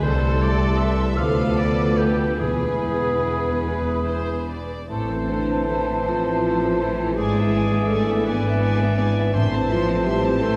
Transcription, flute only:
0.06 C6
1.18 D6
2.42 B5
4.89 A5
7.18 G#5
8.26 G#5
9.35 A5
10.43 A5

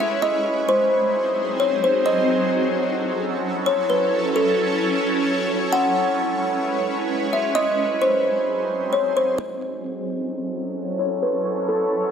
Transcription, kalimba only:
0.00 E5
0.22 D#5
0.69 C5
1.60 C#5
1.84 C5
2.06 D#5
3.66 C#5
3.90 B4
4.36 A4
5.73 F#5
7.33 E5
7.55 D#5
8.02 C5
8.93 C#5
9.17 C5
9.38 D#5
10.99 C#5
11.22 B4
11.69 A4

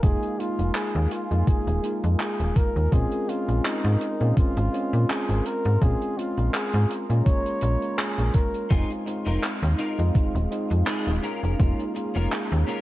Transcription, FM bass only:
0.03 F1
0.59 F1
0.95 D#2
1.31 F2
1.67 D#1
2.04 F2
2.40 D#1
2.76 D#2
2.92 A#1
3.48 A#1
3.84 G#2
4.21 A#2
4.37 G#1
4.57 G#1
4.93 A#2
5.29 G#1
5.65 G#2
5.82 A#1
6.38 A#1
6.74 G#2
7.10 A#2
7.62 A#1
8.18 A#1
8.71 F1
9.27 F1
9.63 D#2
9.99 F2
10.15 D#1
10.35 D#1
10.71 F2
11.07 D#1
11.43 F1
11.60 F1
12.16 F1
12.52 D#2

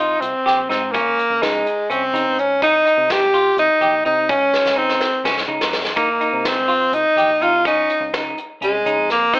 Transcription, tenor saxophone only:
Already playing: D#4
0.20 C4
0.70 C4
0.92 A#3
1.42 G#3
1.91 C4
2.39 C#4
2.63 D#4
3.11 G4
3.59 D#4
4.06 D#4
4.30 C#4
4.77 C4
5.96 A#3
6.46 C4
6.94 D#4
7.43 F4
7.67 D#4
8.64 G#3
9.11 A#3
9.35 C4

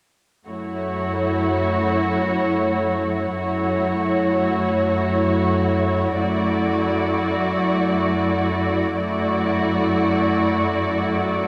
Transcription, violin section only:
0.49 F#4 C#5
3.37 F#4 C#5
6.18 F#4 D5
8.98 F#4 D5

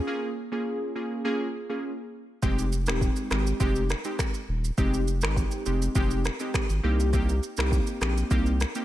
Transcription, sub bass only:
2.43 F1
2.87 D#1
3.31 G#1
3.60 F1
4.49 D#1
4.78 F1
5.23 G#1
5.66 F1
5.95 F1
6.70 G#1
6.84 C2
7.58 C2
8.01 A#1
8.31 C2

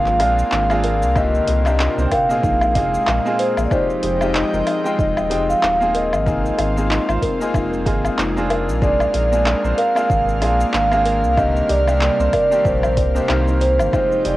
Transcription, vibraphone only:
Already playing: F5
1.17 D#5
2.06 G5
2.13 F5
3.39 C5
3.65 D5
3.72 C5
4.35 D#5
4.99 D#5
5.49 F5
5.95 D#5
8.82 D5
9.78 F5
10.73 F5
11.37 D#5
11.69 D5
12.33 D5
12.64 C5
13.61 C5
13.93 C5
14.25 D5

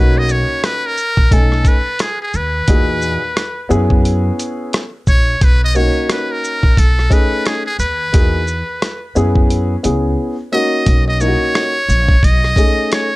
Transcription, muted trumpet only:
0.00 B4
0.18 D#5
0.31 C#5
0.65 B4
0.86 A#4
1.33 A4
1.68 B4
2.01 G#4
2.22 G#4
2.36 B4
5.09 C#5
5.44 B4
5.64 D#5
5.76 C#5
6.12 B4
6.32 A#4
6.79 A4
7.13 B4
7.47 G#4
7.66 G#4
7.80 B4
10.53 D#5
11.08 D#5
11.21 C#5
12.25 D#5
12.93 C#5

